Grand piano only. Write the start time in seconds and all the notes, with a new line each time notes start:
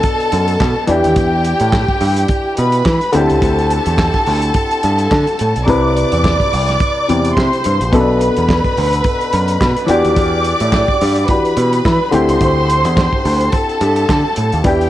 Already playing: B2 B3 D4 A4
0.87 E3 D4 E4 G4
3.12 D3 C4 E4 G4
5.67 C3 C4 E4 B4
7.08 C3 C4 E4 G4
7.92 B2 B3 C#4 A4
8.00 D4
9.86 E3 D4 F#4 G4
11.28 E3 D4 F#4 G4
12.11 D3 C4 E4 G4
14.64 E3 D4 E4 G4